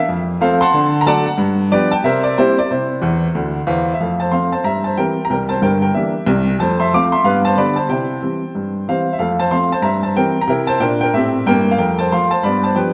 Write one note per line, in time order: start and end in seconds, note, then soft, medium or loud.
0.09 0.37 F2 medium
0.41 0.59 F3 medium
0.41 0.59 A3 soft
0.41 0.60 C4 medium
0.41 0.60 A4 medium
0.41 0.60 C5 medium
0.41 0.61 F5 loud
0.61 0.98 F#5 medium
0.61 0.98 A5 medium
0.61 1.00 C6 loud
0.74 1.02 D3 medium
1.01 1.07 A#5 medium
1.06 1.25 F#3 medium
1.06 1.24 A3 medium
1.06 1.25 D4 medium
1.06 1.26 D5 medium
1.06 1.24 F#5 medium
1.06 1.26 A5 loud
1.26 1.39 F#5 medium
1.38 1.66 G2 medium
1.71 1.89 F3 soft
1.71 1.89 B3 medium
1.71 1.90 D4 medium
1.71 1.90 G4 medium
1.71 1.91 B4 medium
1.71 1.92 D5 loud
1.91 2.04 G5 medium
1.91 1.93 A5 loud
2.04 2.32 C3 medium
2.04 2.23 A#4 medium
2.04 2.23 C5 medium
2.04 2.24 E5 medium
2.23 2.37 D5 medium
2.38 2.55 G3 medium
2.38 2.56 A#3 soft
2.38 2.56 C4 medium
2.38 2.56 E4 medium
2.38 2.56 G4 medium
2.38 2.57 C5 medium
2.58 2.70 D5 medium
2.71 2.98 C3 medium
2.71 3.64 E4 soft
2.71 3.64 G4 soft
2.71 3.66 C5 medium
3.01 3.26 E2 medium
3.01 3.26 E3 medium
3.35 3.59 D2 medium
3.35 3.59 D3 medium
3.67 3.91 E2 medium
3.67 3.91 E3 medium
3.67 3.92 C5 medium
3.67 3.93 F5 medium
3.94 4.00 E5 medium
4.00 4.28 F2 medium
4.00 4.19 A3 soft
4.00 4.19 A4 soft
4.00 4.20 F5 medium
4.20 4.32 C5 medium
4.20 4.32 A5 medium
4.32 4.50 F3 soft
4.32 4.50 A3 soft
4.32 4.50 C4 soft
4.32 4.51 F5 medium
4.32 4.51 C6 medium
4.52 4.64 C5 soft
4.52 4.65 A5 medium
4.64 4.92 G2 medium
4.64 4.84 E5 medium
4.64 4.84 A#5 medium
4.84 4.97 C5 medium
4.84 4.97 A5 medium
4.97 5.15 E3 soft
4.97 5.15 G3 soft
4.97 5.16 C4 soft
4.97 5.22 A#4 medium
4.97 5.23 G5 medium
5.25 5.30 A#5 medium
5.30 5.56 C2 medium
5.30 5.56 C3 medium
5.30 5.49 A#4 soft
5.30 5.50 G5 medium
5.49 5.61 C5 medium
5.49 5.62 A5 medium
5.61 5.88 G1 medium
5.61 5.88 G2 medium
5.61 5.81 A#4 medium
5.61 5.81 G5 medium
5.82 5.94 A#4 medium
5.82 5.95 G5 medium
5.94 6.13 E3 soft
5.94 6.13 A#3 soft
5.94 6.12 D4 soft
5.94 6.26 G4 soft
5.94 6.27 E5 medium
6.26 6.53 C2 medium
6.26 6.53 C3 medium
6.59 6.87 F2 medium
6.59 6.78 A3 soft
6.59 6.79 C5 medium
6.59 6.79 A5 medium
6.80 6.92 E5 medium
6.80 6.92 C6 medium
6.93 7.11 F3 soft
6.93 7.12 A3 medium
6.93 7.11 C4 medium
6.93 7.12 F5 medium
6.93 7.13 D6 loud
7.12 7.25 E5 medium
7.12 7.25 C6 loud
7.24 7.52 G2 medium
7.24 7.44 B3 soft
7.24 7.43 B4 medium
7.24 7.44 F5 medium
7.45 7.57 C5 medium
7.45 7.57 A5 medium
7.57 7.75 D3 medium
7.57 7.75 G3 soft
7.57 7.75 B3 medium
7.57 7.76 D5 medium
7.57 7.77 B5 medium
7.76 7.89 C5 medium
7.76 7.89 A5 medium
7.89 8.17 C3 medium
7.89 8.09 E4 soft
7.89 8.83 C5 soft
7.89 8.87 G5 medium
8.22 8.40 E3 soft
8.22 8.40 G3 soft
8.22 8.41 C4 soft
8.55 8.82 G2 soft
8.88 9.05 E3 soft
8.88 9.06 G3 soft
8.88 9.06 C4 soft
8.88 9.12 C5 medium
8.88 9.14 F5 medium
9.13 9.19 E5 medium
9.19 9.47 F2 medium
9.19 9.38 A3 soft
9.19 9.38 A4 medium
9.19 9.39 F5 medium
9.39 9.51 C5 medium
9.39 9.52 A5 medium
9.51 9.69 F3 soft
9.51 9.70 A3 soft
9.51 9.70 C4 soft
9.51 9.70 F5 medium
9.51 9.71 C6 medium
9.72 9.85 C5 medium
9.72 9.85 A5 medium
9.82 10.11 G2 medium
9.82 10.03 E5 medium
9.82 10.03 A#5 medium
10.03 10.16 C5 soft
10.03 10.16 A5 medium
10.16 10.34 E3 soft
10.16 10.34 G3 medium
10.16 10.35 C4 medium
10.16 10.41 A#4 medium
10.16 10.43 G5 medium
10.41 10.49 A#5 medium
10.47 10.74 C3 medium
10.47 10.75 E4 medium
10.47 10.68 A#4 medium
10.47 10.68 G5 medium
10.67 10.81 C5 medium
10.67 10.81 A5 medium
10.80 11.07 A#2 medium
10.80 11.08 D4 medium
10.80 11.00 A#4 medium
10.80 10.99 G5 medium
11.01 11.14 A#4 medium
11.01 11.14 G5 medium
11.14 11.40 A2 medium
11.14 11.41 C4 medium
11.14 11.45 G4 medium
11.14 11.47 E5 medium
11.46 11.73 G2 medium
11.46 11.74 A#3 medium
11.46 11.72 A#4 medium
11.46 11.73 G5 loud
11.71 11.79 F5 medium
11.78 12.06 F2 medium
11.78 11.97 A3 soft
11.78 11.97 A#4 medium
11.78 11.99 G5 medium
11.99 12.11 C5 medium
11.99 12.12 A5 medium
12.12 12.30 F3 soft
12.12 12.30 A3 soft
12.12 12.30 F4 soft
12.12 12.31 F5 medium
12.12 12.32 C6 medium
12.31 12.44 C5 medium
12.31 12.44 A5 medium
12.43 12.72 G2 medium
12.43 12.63 B3 soft
12.43 12.63 D5 medium
12.43 12.64 B5 medium
12.64 12.76 C5 medium
12.64 12.77 A5 medium
12.75 12.93 F3 soft
12.75 12.93 G3 medium
12.75 12.93 D4 soft
12.75 12.93 B4 medium
12.75 12.93 G5 medium